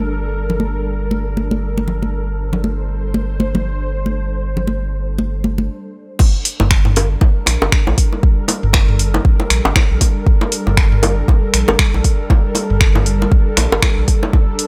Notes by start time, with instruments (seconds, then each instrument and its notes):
Already playing: analog synth bass G1, ambient pad G3 D4 A4 A#4
0.50 low conga
0.60 high conga
1.11 high conga
1.37 high conga
1.51 high conga
1.78 high conga
1.88 low conga
2.02 high conga
2.13 ambient pad C5
2.53 low conga
2.64 high conga
3.14 high conga
3.40 high conga
3.55 high conga, low conga
4.06 high conga
4.57 low conga
4.67 high conga
5.18 high conga
5.44 high conga
5.58 high conga
6.19 ambient pad G3 D4 A4 A#4, kick, crash, low bongo
6.45 open hi-hat
6.60 analog synth bass G1, mid tom, low bongo
6.71 finger snap, kick
6.85 mid tom, low bongo
6.96 open hi-hat, high bongo
7.21 kick, low bongo
7.46 analog synth bass A#1, finger snap, open hi-hat, low bongo
7.62 analog synth bass G1, high bongo
7.72 finger snap, kick
7.87 analog synth bass A#1, low bongo
7.98 kick, open hi-hat
8.13 low bongo
8.23 kick
8.48 open hi-hat, low bongo
8.63 analog synth bass G1, mid tom
8.73 finger snap, kick, low bongo
8.89 mid tom
8.99 open hi-hat
9.14 low bongo
9.25 kick
9.40 low bongo
9.50 analog synth bass A#1, finger snap, open hi-hat
9.65 analog synth bass G1, high bongo
9.76 finger snap, kick, low bongo
9.91 analog synth bass A#1
10.01 kick, open hi-hat, low bongo
10.27 kick
10.41 low bongo
10.52 open hi-hat
10.67 analog synth bass G1, mid tom, low bongo
10.77 finger snap, kick
10.92 mid tom
11.03 open hi-hat, high bongo, low bongo
11.28 kick, low bongo
11.54 analog synth bass A#1, finger snap, open hi-hat
11.68 analog synth bass G1, high bongo, low bongo
11.79 finger snap, kick
11.94 analog synth bass A#1, low bongo
12.04 kick, open hi-hat
12.30 kick, low bongo
12.55 open hi-hat, low bongo
12.70 analog synth bass G1, mid tom
12.81 finger snap, kick
12.95 mid tom, low bongo
13.06 open hi-hat
13.22 low bongo
13.32 kick
13.57 analog synth bass A#1, finger snap, open hi-hat, low bongo
13.72 analog synth bass G1, high bongo
13.82 finger snap, kick, low bongo
13.97 analog synth bass A#1
14.08 kick, open hi-hat
14.23 low bongo
14.33 ambient pad D5, kick, low bongo
14.59 open hi-hat